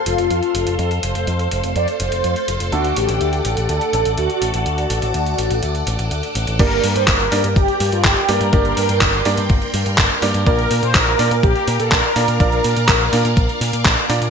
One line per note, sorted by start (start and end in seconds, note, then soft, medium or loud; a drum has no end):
0.00 2.70 F3 medium
0.00 2.70 A3 medium
0.00 2.70 C4 medium
0.00 2.70 A4 medium
0.00 6.55 A4 medium
0.00 2.68 C5 medium
0.00 2.68 F5 medium
0.00 2.68 C6 medium
0.06 0.16 F1 medium
0.06 0.81 F4 loud
0.06 closed hi-hat medium
0.18 0.28 F1 medium
0.18 closed hi-hat soft
0.30 0.40 F2 medium
0.30 closed hi-hat soft
0.43 closed hi-hat soft
0.55 0.64 F1 medium
0.55 closed hi-hat medium
0.67 0.76 F1 medium
0.67 closed hi-hat soft
0.79 0.98 F2 medium
0.79 0.90 A4 loud
0.79 closed hi-hat soft
0.91 closed hi-hat soft
1.03 1.13 F1 medium
1.03 1.78 C5 loud
1.03 closed hi-hat medium
1.15 1.25 F1 medium
1.15 closed hi-hat soft
1.27 1.47 F2 medium
1.27 closed hi-hat soft
1.39 closed hi-hat soft
1.51 1.61 F1 medium
1.51 closed hi-hat medium
1.64 1.73 F1 medium
1.64 closed hi-hat soft
1.76 1.85 F2 medium
1.76 1.87 D5 loud
1.76 closed hi-hat soft
1.88 closed hi-hat soft
2.00 2.10 F1 medium
2.00 2.68 C5 loud
2.00 closed hi-hat medium
2.12 2.22 F1 medium
2.12 closed hi-hat soft
2.24 2.34 F2 medium
2.24 closed hi-hat soft
2.36 closed hi-hat soft
2.48 2.58 F1 medium
2.48 closed hi-hat medium
2.60 2.70 F1 medium
2.60 closed hi-hat soft
2.72 2.92 D2 medium
2.72 6.57 D3 medium
2.72 6.57 A3 medium
2.72 6.57 D4 medium
2.72 2.97 F#4 loud
2.72 6.57 A4 medium
2.72 6.56 D5 medium
2.72 6.56 F#5 medium
2.72 6.56 D6 medium
2.72 closed hi-hat soft
2.84 closed hi-hat soft
2.96 3.06 A1 medium
2.96 3.71 G4 loud
2.96 closed hi-hat medium
3.09 3.18 A1 medium
3.09 closed hi-hat medium
3.21 3.40 D2 medium
3.21 closed hi-hat soft
3.33 closed hi-hat soft
3.45 3.55 A1 medium
3.45 closed hi-hat medium
3.57 3.67 A1 medium
3.57 closed hi-hat soft
3.69 3.79 D2 medium
3.69 4.14 A4 loud
3.69 closed hi-hat medium
3.81 closed hi-hat soft
3.93 4.03 A1 medium
3.93 closed hi-hat medium
4.05 4.15 A1 medium
4.05 closed hi-hat soft
4.17 4.27 D2 medium
4.17 4.65 F#4 medium
4.17 closed hi-hat soft
4.30 closed hi-hat soft
4.42 4.51 A1 medium
4.42 closed hi-hat medium
4.54 4.63 A1 medium
4.54 closed hi-hat soft
4.66 4.85 D2 medium
4.66 6.07 F#4 medium
4.66 closed hi-hat medium
4.78 closed hi-hat soft
4.90 5.00 A1 medium
4.90 closed hi-hat medium
5.02 5.12 A1 medium
5.02 closed hi-hat medium
5.14 5.33 D2 medium
5.14 closed hi-hat medium
5.26 closed hi-hat soft
5.38 5.48 A1 medium
5.38 closed hi-hat medium
5.50 5.60 A1 medium
5.50 closed hi-hat soft
5.62 5.82 D2 medium
5.62 closed hi-hat medium
5.75 closed hi-hat soft
5.87 5.96 A1 medium
5.87 closed hi-hat medium
5.99 6.08 A1 medium
5.99 closed hi-hat soft
6.11 6.21 D2 medium
6.11 closed hi-hat soft
6.23 closed hi-hat soft
6.35 6.45 A1 medium
6.35 closed hi-hat medium
6.47 6.57 A1 medium
6.47 closed hi-hat soft
6.59 6.79 G1 loud
6.59 7.29 A#3 medium
6.59 7.29 D4 medium
6.59 7.29 G4 medium
6.59 14.30 A#4 medium
6.59 6.97 A#4 loud
6.59 10.43 D5 medium
6.59 7.29 D5 loud
6.59 10.43 G5 medium
6.59 8.51 D6 medium
6.59 kick loud
6.59 closed hi-hat medium
6.59 crash loud
6.71 closed hi-hat soft
6.84 6.93 G2 medium
6.84 open hi-hat loud
6.96 7.05 G2 medium
6.96 7.08 C5 loud
6.96 closed hi-hat medium
7.08 7.27 G1 loud
7.08 7.58 A#4 loud
7.08 kick loud
7.08 clap loud
7.08 closed hi-hat medium
7.20 closed hi-hat soft
7.32 7.42 G2 medium
7.32 7.45 A#3 loud
7.32 7.45 D4 medium
7.32 7.45 G4 medium
7.32 7.45 D5 loud
7.32 open hi-hat loud
7.44 7.54 G2 medium
7.44 closed hi-hat medium
7.56 7.66 G1 loud
7.56 7.90 G4 loud
7.56 kick loud
7.56 closed hi-hat medium
7.68 closed hi-hat soft
7.80 7.90 G2 loud
7.80 open hi-hat loud
7.92 8.02 G2 medium
7.92 8.04 F4 medium
7.92 closed hi-hat medium
8.05 8.14 G1 medium
8.05 8.30 G4 loud
8.05 kick loud
8.05 clap loud
8.05 closed hi-hat medium
8.17 closed hi-hat soft
8.29 8.38 G2 medium
8.29 8.50 A#3 medium
8.29 8.50 D4 medium
8.29 8.50 G4 medium
8.29 9.94 A#4 loud
8.29 8.50 D5 loud
8.29 open hi-hat loud
8.41 8.50 G2 medium
8.41 closed hi-hat medium
8.53 8.72 G1 loud
8.53 9.23 A#3 medium
8.53 9.23 D4 medium
8.53 9.23 G4 medium
8.53 9.23 D5 loud
8.53 10.45 C6 medium
8.53 kick loud
8.53 closed hi-hat medium
8.65 closed hi-hat soft
8.77 8.87 G2 medium
8.77 open hi-hat loud
8.89 8.99 G2 medium
8.89 closed hi-hat medium
9.01 9.21 G1 loud
9.01 kick loud
9.01 clap loud
9.01 closed hi-hat medium
9.13 closed hi-hat soft
9.25 9.35 G2 medium
9.25 9.39 A#3 loud
9.25 9.39 D4 medium
9.25 9.39 G4 medium
9.25 9.39 D5 loud
9.25 open hi-hat loud
9.37 9.47 G2 medium
9.37 closed hi-hat medium
9.50 9.59 G1 loud
9.50 kick loud
9.50 closed hi-hat medium
9.62 closed hi-hat soft
9.74 9.84 G2 loud
9.74 open hi-hat loud
9.86 9.96 G2 medium
9.86 closed hi-hat medium
9.98 10.08 G1 medium
9.98 kick loud
9.98 clap loud
9.98 closed hi-hat medium
10.10 closed hi-hat soft
10.22 10.32 G2 medium
10.22 10.44 A#3 medium
10.22 10.44 D4 medium
10.22 10.44 G4 medium
10.22 10.44 D5 loud
10.22 open hi-hat loud
10.34 10.44 G2 medium
10.34 closed hi-hat medium
10.46 10.66 A#1 loud
10.46 11.16 A#3 medium
10.46 11.16 D4 medium
10.46 11.16 F4 medium
10.46 10.84 A#4 loud
10.46 14.30 D5 medium
10.46 11.16 D5 loud
10.46 14.30 F5 medium
10.46 14.30 D6 medium
10.46 kick loud
10.46 closed hi-hat medium
10.59 closed hi-hat soft
10.71 10.80 A#2 medium
10.71 open hi-hat loud
10.83 10.92 A#2 medium
10.83 10.95 C5 loud
10.83 closed hi-hat medium
10.95 11.14 A#1 loud
10.95 11.45 A#4 loud
10.95 kick loud
10.95 clap loud
10.95 closed hi-hat soft
11.07 closed hi-hat soft
11.19 11.29 A#2 medium
11.19 11.32 A#3 loud
11.19 11.32 D4 medium
11.19 11.32 F4 medium
11.19 11.32 D5 loud
11.19 open hi-hat loud
11.31 11.41 A#2 medium
11.31 closed hi-hat medium
11.43 11.53 A#1 loud
11.43 11.81 G4 loud
11.43 kick loud
11.43 closed hi-hat medium
11.56 closed hi-hat soft
11.68 11.77 A#2 loud
11.68 open hi-hat loud
11.80 11.89 A#2 medium
11.80 11.92 A4 loud
11.80 closed hi-hat medium
11.92 12.01 A#1 medium
11.92 12.39 A#4 loud
11.92 kick loud
11.92 clap loud
11.92 closed hi-hat medium
12.04 closed hi-hat soft
12.16 12.26 A#2 medium
12.16 12.37 A#3 medium
12.16 12.37 D4 medium
12.16 12.37 F4 medium
12.16 12.37 D5 loud
12.16 open hi-hat loud
12.28 12.38 A#2 medium
12.28 closed hi-hat medium
12.40 12.59 A#1 loud
12.40 13.10 A#3 medium
12.40 13.10 D4 medium
12.40 13.10 F4 medium
12.40 13.81 A#4 loud
12.40 13.10 D5 loud
12.40 kick loud
12.40 closed hi-hat soft
12.52 closed hi-hat soft
12.64 12.74 A#2 loud
12.64 open hi-hat loud
12.77 12.86 A#2 medium
12.77 closed hi-hat medium
12.89 13.08 A#1 medium
12.89 kick loud
12.89 clap loud
12.89 closed hi-hat soft
13.01 closed hi-hat soft
13.13 13.22 A#2 medium
13.13 13.26 A#3 loud
13.13 13.26 D4 medium
13.13 13.26 F4 medium
13.13 13.26 D5 loud
13.13 open hi-hat loud
13.25 13.34 A#2 medium
13.25 closed hi-hat soft
13.37 13.47 A#1 loud
13.37 kick loud
13.37 closed hi-hat medium
13.49 closed hi-hat soft
13.61 13.71 A#2 loud
13.61 open hi-hat loud
13.73 13.83 A#2 medium
13.73 closed hi-hat medium
13.85 13.95 A#1 medium
13.85 kick loud
13.85 clap loud
13.85 closed hi-hat medium
13.97 closed hi-hat soft
14.09 14.19 A#2 medium
14.09 14.30 A#3 medium
14.09 14.30 D4 medium
14.09 14.30 F4 medium
14.09 14.30 D5 loud
14.09 open hi-hat loud
14.21 14.30 A#2 medium
14.21 closed hi-hat medium